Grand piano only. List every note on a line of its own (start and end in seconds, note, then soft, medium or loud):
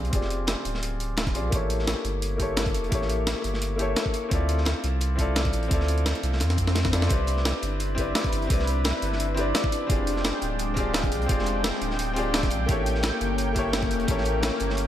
0.00 0.10 C4 medium
0.00 0.11 F4 medium
0.00 0.13 G4 medium
0.00 0.14 G#4 medium
0.00 0.15 D5 loud
0.10 0.97 C4 medium
0.10 0.97 F4 medium
0.10 0.98 G4 medium
0.14 0.99 G#4 medium
0.14 0.99 D5 loud
1.33 1.42 C4 medium
1.33 1.42 F4 medium
1.33 1.43 G4 medium
1.33 1.43 G#4 medium
1.33 1.43 D5 medium
1.50 2.35 A#3 medium
1.50 2.37 E4 medium
1.50 2.38 G4 medium
1.54 2.38 A4 medium
1.54 2.39 C#5 medium
2.37 2.87 A#3 medium
2.37 2.89 E4 medium
2.37 2.90 G4 medium
2.41 2.91 A4 medium
2.41 2.91 C#5 loud
2.89 3.75 A#3 medium
2.89 3.76 E4 medium
2.89 3.77 G4 medium
2.93 3.78 A4 medium
2.93 3.79 C#5 medium
3.76 4.28 A#3 loud
3.76 4.29 E4 medium
3.76 4.29 G4 medium
3.80 4.30 A4 medium
3.80 4.31 C#5 loud
4.29 5.14 C4 medium
4.29 5.15 E4 medium
4.29 5.17 F4 medium
4.33 5.17 A4 medium
4.33 5.18 D5 loud
5.16 5.67 C4 medium
5.16 5.68 E4 medium
5.16 5.69 F4 medium
5.20 5.70 A4 medium
5.20 5.70 D5 loud
5.68 6.55 C4 medium
5.68 6.55 E4 medium
5.68 6.56 F4 medium
5.72 6.57 A4 medium
5.72 6.58 D5 loud
6.91 7.00 C4 medium
6.91 7.01 E4 medium
6.91 7.01 F4 medium
6.91 7.01 A4 medium
6.91 7.02 D5 medium
7.07 7.93 C4 medium
7.07 7.95 E4 medium
7.07 7.96 G4 medium
7.12 7.96 B4 medium
7.12 7.97 D5 loud
7.95 8.46 C4 medium
7.95 8.47 E4 medium
7.95 8.48 G4 medium
7.99 8.49 B4 medium
7.99 8.50 D5 loud
8.47 9.33 C4 medium
8.47 9.34 E4 medium
8.47 9.35 G4 medium
8.52 9.36 B4 medium
8.52 9.37 D5 medium
9.34 9.85 C4 loud
9.34 9.87 E4 medium
9.34 9.88 G4 medium
9.39 9.88 B4 medium
9.39 9.89 D5 loud
9.87 10.72 C4 medium
9.87 10.74 F4 medium
9.87 10.75 G4 medium
9.91 10.76 G#4 medium
9.91 10.76 D5 loud
10.74 11.25 C4 medium
10.74 11.26 F4 medium
10.74 11.27 G4 medium
10.78 11.28 G#4 medium
10.78 11.29 D5 loud
11.26 12.12 C4 medium
11.26 12.13 F4 medium
11.26 12.15 G4 medium
11.31 12.15 G#4 medium
11.31 12.16 D5 loud
12.13 12.65 C4 medium
12.13 12.66 F4 medium
12.13 12.67 G4 medium
12.18 12.67 G#4 medium
12.18 12.68 D5 loud
12.66 13.52 A#3 medium
12.66 13.53 E4 medium
12.66 13.54 G4 medium
12.70 13.55 A4 medium
12.70 13.55 C#5 medium
13.53 14.04 A#3 loud
13.53 14.05 E4 medium
13.53 14.06 G4 medium
13.57 14.07 A4 medium
13.57 14.08 C#5 loud
14.05 14.87 A#3 medium
14.05 14.87 E4 medium
14.05 14.87 G4 medium
14.10 14.87 A4 medium
14.10 14.87 C#5 loud